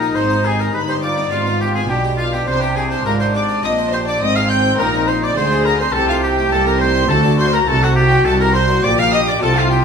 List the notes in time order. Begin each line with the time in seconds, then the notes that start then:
Already playing: A#1 A#2 D#4 A#4 A#5
0.02 D#4
0.15 G#1 G#2 C4 C5 C6
0.30 C5
0.44 G4 G#4 G#5
0.59 D#4 A#4 A#5
0.73 G1 G2 B4 B5
0.88 G4 C5 C6
1.02 F4 D5 D6
1.17 B3
1.31 G#1 G#2 C4 F4 F5
1.46 B3
1.61 F4 G4 G5
1.75 B3 G#4 G#5
1.89 B1 B2 D4 G4 G5
2.04 G4
2.17 F4 F5
2.33 B3 G4 G5
2.47 C2 C3 C5 C6
2.61 G4 C5 G5
2.75 G4 G#4 G#5
2.91 D#4 C5 C6
3.04 G#1 G#2 F4 A#4 A#5
3.20 D#4 C5 C6
3.34 G4 D5 D6
3.49 D#4
3.63 A#1 A#2 C4 D#5 D#6
3.78 C5
3.92 G4 C5 C6
4.06 D#4 D5 D6
4.21 G#1 G#2 C4 D#5 D#6
4.36 G#4 F5 F6
4.49 D#4 G5 G6
4.65 C4
4.78 A#1 A#2 D4 D#4 A#4 A#5
4.94 C4
5.07 D#4 C5 C6
5.22 C4 D5 D6
5.36 D2 D3 G#3 G#4 C5 C6
5.52 G#4
5.65 D#4 A#4 A#5
5.80 C4 C5 C6
5.93 C2 C3 G4 A4 A5
6.08 F4 A4 F5
6.23 D#4 G4 G5
6.39 A3
6.51 C2 A#3 A4 A5
6.67 D#4 A#4 A#5
6.81 A3 C5 C6
6.96 D#4
7.08 D2 D3 F#4 A4 A5
7.24 D5
7.39 A4 C5 C6
7.53 F#4 A#4 A#5
7.67 C2 C3 F#4 A4 A5
7.82 F#4 A4 F#5
7.96 F#4 G4 G5
8.11 D4
8.24 C2 D#4 A4 A5
8.40 D4 A#4 A#5
8.54 F#4 C5 C6
8.69 D4
8.83 A#1 A#2 G4 D5 D6
8.98 A#4 F5 F6
9.13 G4 D#5 D#6
9.28 D4 D5 D6
9.41 C2 C3 F4 A4 A5
9.55 F4 A4 F5
9.71 D#4 G4 G5